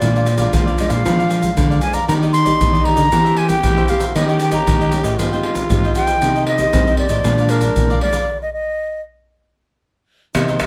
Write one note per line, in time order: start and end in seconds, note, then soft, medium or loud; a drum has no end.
0.00 0.46 A#2 medium
0.00 0.52 A#2 soft
0.00 0.27 F3 soft
0.00 1.79 F4 medium
0.00 0.14 G#4 soft
0.00 0.15 A#4 soft
0.00 0.52 D5 medium
0.00 0.15 D5 soft
0.00 0.15 F5 medium
0.00 pandeiro medium
0.00 shaker medium
0.00 surdo medium
0.04 0.28 G#3 medium
0.04 0.28 D4 medium
0.16 0.26 A#4 soft
0.16 0.27 D5 medium
0.16 0.26 F5 medium
0.16 pandeiro soft
0.16 shaker soft
0.26 muted cavaquinho stroke soft
0.26 pandeiro medium
0.26 shaker medium
0.38 0.75 F3 medium
0.38 0.75 G#3 medium
0.38 0.76 D4 medium
0.38 0.53 A#4 soft
0.38 0.52 D5 medium
0.38 0.52 F5 medium
0.38 pandeiro medium
0.38 shaker medium
0.38 surdo soft
0.53 1.04 F2 medium
0.53 0.87 A#3 medium
0.53 0.65 G#4 soft
0.53 0.66 A#4 soft
0.53 0.65 D5 soft
0.53 0.66 F5 soft
0.53 pandeiro medium
0.53 shaker medium
0.53 surdo medium
0.66 0.89 A#4 soft
0.66 0.87 D5 medium
0.66 0.88 F5 medium
0.66 pandeiro soft
0.66 shaker soft
0.78 1.02 F3 medium
0.78 1.02 G#3 soft
0.78 1.02 D4 medium
0.78 0.92 D#5 medium
0.78 pandeiro medium
0.78 shaker medium
0.88 1.02 A#2 medium
0.88 1.03 A#4 soft
0.88 1.02 D5 medium
0.88 1.03 F5 medium
0.88 1.69 F5 medium
0.88 pandeiro medium
0.88 shaker medium
0.88 surdo soft
1.04 1.55 A#2 soft
1.04 1.49 F3 medium
1.04 1.40 F3 medium
1.04 1.41 G#3 soft
1.04 1.41 D4 medium
1.04 1.17 G#4 soft
1.04 1.17 A#4 medium
1.04 1.16 D5 soft
1.04 1.17 F5 soft
1.04 pandeiro medium
1.04 shaker medium
1.04 surdo medium
1.18 1.28 A#4 soft
1.18 1.29 D5 medium
1.18 1.28 F5 medium
1.18 pandeiro soft
1.18 shaker soft
1.29 1.40 G#4 medium
1.29 1.40 A#4 medium
1.29 1.41 D5 medium
1.29 1.41 F5 medium
1.29 pandeiro medium
1.29 shaker medium
1.41 1.78 F3 medium
1.41 1.79 G#3 medium
1.41 1.79 D4 medium
1.41 muted cavaquinho stroke soft
1.41 pandeiro soft
1.41 shaker medium
1.41 surdo soft
1.57 2.06 F2 medium
1.57 1.79 D3 medium
1.57 pandeiro medium
1.57 shaker medium
1.57 surdo medium
1.70 1.81 A#4 soft
1.70 1.82 D5 medium
1.70 1.81 F5 medium
1.70 pandeiro soft
1.70 shaker soft
1.81 1.98 F3 medium
1.81 1.98 G#3 soft
1.81 1.98 D4 medium
1.81 1.94 G#4 soft
1.81 1.94 A#4 soft
1.81 1.92 D5 medium
1.81 1.93 F5 medium
1.81 1.95 G#5 medium
1.81 pandeiro medium
1.81 shaker medium
1.93 2.08 A#4 soft
1.93 2.07 D5 medium
1.93 2.07 F5 medium
1.93 2.07 A#5 medium
1.93 pandeiro soft
1.93 shaker medium
1.93 surdo soft
2.08 2.53 D#3 medium
2.08 2.58 D#3 soft
2.08 2.44 A#3 soft
2.08 2.21 D4 soft
2.08 3.08 D#4 medium
2.08 2.21 G4 soft
2.08 2.44 G4 soft
2.08 2.20 D5 soft
2.08 2.21 D#5 soft
2.08 2.14 A#5 medium
2.08 pandeiro medium
2.08 shaker medium
2.08 surdo medium
2.22 2.32 G4 medium
2.22 2.32 D5 medium
2.22 2.32 D#5 medium
2.22 pandeiro soft
2.22 shaker soft
2.33 2.86 C6 medium
2.33 muted cavaquinho stroke soft
2.33 pandeiro medium
2.33 shaker medium
2.45 2.82 A#3 medium
2.45 2.58 G4 medium
2.45 2.82 G4 medium
2.45 2.58 D5 medium
2.45 2.58 D#5 medium
2.45 pandeiro medium
2.45 shaker medium
2.45 surdo soft
2.59 2.94 D#3 medium
2.59 2.72 D4 soft
2.59 2.72 G4 soft
2.59 2.71 D5 soft
2.59 2.72 D#5 soft
2.59 pandeiro medium
2.59 shaker medium
2.59 surdo medium
2.72 2.97 G4 medium
2.72 2.95 D5 medium
2.72 2.95 D#5 medium
2.72 pandeiro soft
2.72 shaker soft
2.85 3.02 A#3 medium
2.85 3.02 D4 medium
2.85 3.02 G4 medium
2.85 3.39 A#5 medium
2.85 pandeiro medium
2.85 surdo soft
2.96 3.09 D3 medium
2.96 3.10 G4 soft
2.96 3.09 D5 medium
2.96 3.10 D#5 medium
2.96 pandeiro soft
2.96 shaker medium
2.96 surdo soft
3.11 3.61 E3 medium
3.11 3.56 E3 medium
3.11 3.47 A#3 soft
3.11 3.47 C4 soft
3.11 3.23 E4 soft
3.11 4.05 G4 loud
3.11 3.47 G4 medium
3.11 3.24 A#4 medium
3.11 3.24 C5 soft
3.11 3.24 E5 soft
3.11 pandeiro medium
3.11 shaker medium
3.11 surdo medium
3.25 3.36 A#4 soft
3.25 3.36 C5 medium
3.25 3.37 E5 medium
3.25 pandeiro soft
3.25 shaker soft
3.36 3.47 E4 medium
3.36 3.47 A#4 medium
3.36 3.48 C5 medium
3.36 3.48 E5 medium
3.36 3.50 G#5 medium
3.36 pandeiro medium
3.48 3.84 A#3 medium
3.48 3.84 C4 medium
3.48 3.85 G4 medium
3.48 3.91 G5 medium
3.48 muted cavaquinho stroke soft
3.48 pandeiro medium
3.48 shaker medium
3.48 surdo soft
3.63 4.12 E3 medium
3.63 3.86 E3 medium
3.63 pandeiro medium
3.63 shaker medium
3.63 surdo medium
3.77 3.87 A#4 soft
3.77 3.88 C5 medium
3.77 3.89 E5 medium
3.77 pandeiro soft
3.77 shaker soft
3.88 4.04 A#3 medium
3.88 4.05 C4 medium
3.88 4.01 E4 soft
3.88 4.05 G4 medium
3.88 4.00 A#4 medium
3.88 3.99 C5 medium
3.88 3.98 E5 soft
3.88 4.17 F5 medium
3.88 pandeiro medium
3.88 shaker medium
3.99 4.14 A#4 soft
3.99 4.13 C5 medium
3.99 4.13 E5 medium
3.99 pandeiro medium
3.99 shaker medium
3.99 surdo soft
4.08 4.17 F#4 medium
4.15 4.59 D#3 medium
4.15 4.65 D#3 medium
4.15 4.50 A#3 soft
4.15 4.50 C#4 medium
4.15 4.27 D#4 soft
4.15 5.20 G4 loud
4.15 4.27 G4 soft
4.15 4.50 G4 medium
4.15 4.27 C#5 soft
4.15 4.28 D#5 medium
4.15 4.27 D#5 medium
4.15 pandeiro medium
4.15 shaker medium
4.15 surdo medium
4.28 4.38 G4 medium
4.28 4.38 C#5 medium
4.28 4.39 D#5 medium
4.28 4.40 G5 medium
4.28 pandeiro soft
4.28 shaker soft
4.39 4.52 G5 medium
4.39 muted cavaquinho stroke soft
4.39 pandeiro medium
4.39 shaker medium
4.51 4.88 A#3 medium
4.51 4.88 C#4 medium
4.51 4.65 G4 medium
4.51 4.89 G4 medium
4.51 4.65 C#5 medium
4.51 4.65 D#5 medium
4.51 5.01 A#5 medium
4.51 pandeiro medium
4.51 shaker medium
4.51 surdo soft
4.67 5.00 D#3 medium
4.67 4.79 D#4 soft
4.67 4.79 G4 soft
4.67 4.79 C#5 soft
4.67 4.80 D#5 soft
4.67 pandeiro medium
4.67 shaker medium
4.67 surdo medium
4.81 5.04 G4 medium
4.81 5.03 C#5 medium
4.81 5.02 D#5 medium
4.81 pandeiro soft
4.81 shaker soft
4.92 5.10 A#3 soft
4.92 5.10 C#4 medium
4.92 5.10 G4 medium
4.92 pandeiro medium
4.92 shaker medium
5.03 5.16 A2 medium
5.03 5.17 G4 medium
5.03 5.17 C#5 medium
5.03 5.16 D#5 medium
5.03 pandeiro medium
5.03 shaker medium
5.03 surdo soft
5.18 5.62 G#2 medium
5.18 5.68 G#3 soft
5.18 5.28 C4 soft
5.18 5.28 D#4 soft
5.18 6.24 F4 medium
5.18 5.29 G4 soft
5.18 5.30 G#4 soft
5.18 5.31 C5 soft
5.18 5.31 D#5 soft
5.18 5.31 G5 medium
5.18 pandeiro medium
5.18 shaker medium
5.18 surdo medium
5.32 5.67 C4 medium
5.32 5.67 D#4 medium
5.32 5.67 G4 medium
5.32 5.43 C5 soft
5.32 5.44 D#5 medium
5.32 5.44 G5 medium
5.32 pandeiro soft
5.32 shaker soft
5.43 5.55 G#4 medium
5.43 5.55 C5 medium
5.43 5.55 D#5 medium
5.43 5.56 G5 medium
5.43 pandeiro medium
5.55 muted cavaquinho stroke soft
5.55 pandeiro medium
5.55 shaker medium
5.55 surdo soft
5.70 5.92 G#2 medium
5.70 6.19 D#3 soft
5.70 5.92 C4 medium
5.70 5.92 D#4 medium
5.70 5.92 G4 medium
5.70 pandeiro medium
5.70 shaker medium
5.70 surdo medium
5.84 5.95 C5 soft
5.84 5.95 D#5 medium
5.84 5.95 G5 medium
5.84 pandeiro soft
5.84 shaker soft
5.95 6.10 C4 medium
5.95 6.10 D#4 soft
5.95 6.11 G4 medium
5.95 6.07 G#4 soft
5.95 6.07 C5 soft
5.95 6.06 D#5 medium
5.95 6.44 G5 loud
5.95 6.05 G5 medium
5.95 pandeiro medium
5.95 shaker medium
6.06 6.20 C5 medium
6.06 6.20 D#5 medium
6.06 6.19 G5 medium
6.06 pandeiro medium
6.06 shaker medium
6.06 surdo soft
6.21 6.65 C3 loud
6.21 6.71 C3 medium
6.21 6.46 A#3 medium
6.21 6.98 D#4 medium
6.21 6.34 D#4 soft
6.21 6.46 D#4 medium
6.21 6.46 G4 medium
6.21 6.34 A#4 soft
6.21 6.34 C5 soft
6.21 6.34 D#5 soft
6.21 pandeiro medium
6.21 shaker medium
6.21 surdo medium
6.35 6.45 A#4 soft
6.35 6.45 C5 medium
6.35 6.46 D#5 medium
6.35 pandeiro soft
6.35 shaker soft
6.46 6.95 D#5 medium
6.46 muted cavaquinho stroke soft
6.46 pandeiro medium
6.58 6.94 A#3 medium
6.58 6.94 D#4 medium
6.58 6.94 G4 medium
6.58 6.72 A#4 medium
6.58 6.71 C5 medium
6.58 6.71 D#5 medium
6.58 pandeiro medium
6.58 shaker medium
6.58 surdo soft
6.73 7.23 G2 medium
6.73 7.06 C4 medium
6.73 6.85 D#4 soft
6.73 6.85 A#4 soft
6.73 6.86 C5 soft
6.73 6.85 D#5 medium
6.73 pandeiro medium
6.73 shaker medium
6.73 surdo medium
6.86 7.10 A#4 medium
6.86 7.09 C5 medium
6.86 7.08 D#5 medium
6.86 pandeiro soft
6.86 shaker soft
6.97 7.20 A#3 medium
6.97 7.20 D#4 medium
6.97 7.21 G4 medium
6.97 7.51 D5 medium
6.97 pandeiro medium
7.09 7.22 A2 medium
7.09 7.24 A#4 soft
7.09 7.23 C5 medium
7.09 7.23 D#5 medium
7.09 pandeiro medium
7.09 shaker medium
7.09 surdo soft
7.24 7.68 A#2 medium
7.24 7.74 A#2 soft
7.24 7.59 F3 medium
7.24 7.60 G#3 soft
7.24 8.24 D4 loud
7.24 7.60 D4 medium
7.24 7.37 G#4 soft
7.24 7.37 A#4 soft
7.24 7.38 D5 medium
7.24 7.37 F5 soft
7.24 pandeiro medium
7.24 shaker medium
7.24 surdo medium
7.38 7.49 A#4 soft
7.38 7.50 D5 medium
7.38 7.50 F5 medium
7.38 pandeiro soft
7.38 shaker soft
7.49 7.61 G#4 medium
7.49 8.01 A#4 medium
7.49 7.61 A#4 medium
7.49 7.62 D5 medium
7.49 7.61 F5 medium
7.49 pandeiro medium
7.49 shaker medium
7.61 7.98 F3 medium
7.61 7.98 G#3 medium
7.61 7.98 D4 medium
7.61 muted cavaquinho stroke soft
7.61 pandeiro medium
7.61 shaker medium
7.61 surdo soft
7.76 8.26 F2 medium
7.76 7.98 A#2 medium
7.76 pandeiro medium
7.76 shaker medium
7.76 surdo medium
7.90 8.01 A#4 medium
7.90 8.02 D5 medium
7.90 8.02 F5 medium
7.90 pandeiro soft
7.90 shaker soft
8.01 8.17 F3 medium
8.01 8.17 G#3 medium
8.01 8.17 D4 medium
8.01 8.14 G#4 soft
8.01 8.14 A#4 medium
8.01 8.38 D5 medium
8.01 8.12 D5 soft
8.01 8.13 F5 soft
8.01 pandeiro medium
8.13 8.27 A#4 soft
8.13 8.26 D5 medium
8.13 8.27 F5 medium
8.13 pandeiro medium
8.13 shaker medium
8.13 surdo soft
8.42 8.53 D#5 medium
8.53 9.02 D#5 medium
10.34 10.66 C3 medium
10.34 10.57 C3 medium
10.34 10.56 A#3 medium
10.34 10.46 D#4 soft
10.34 10.66 D#4 medium
10.34 10.56 D#4 medium
10.34 10.57 G4 medium
10.34 10.47 A#4 soft
10.34 10.47 C5 medium
10.34 10.47 D#5 medium
10.34 pandeiro medium
10.34 tamborim medium
10.34 shaker medium
10.34 surdo medium
10.48 10.59 A#4 medium
10.48 10.59 C5 medium
10.48 10.59 D#5 medium
10.48 pandeiro soft
10.48 shaker soft
10.60 10.66 A#3 medium
10.60 10.66 D#4 medium
10.60 10.66 G4 medium
10.60 muted cavaquinho stroke soft
10.60 pandeiro medium
10.60 tamborim medium
10.60 shaker medium
10.60 surdo soft